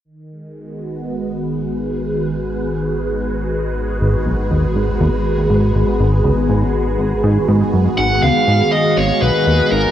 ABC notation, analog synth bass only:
X:1
M:4/4
L:1/8
Q:1/4=121
K:G#m
V:1 name="Analog synth bass" clef=bass
z8 | z8 | G,,, B,,, D,, G,,, D,, z G,, G,,, | G,,, C,, G,, z G,,, G,, G,, F,, |
G,,, C,, G,, z G,,, B,,, D,, G,,, |]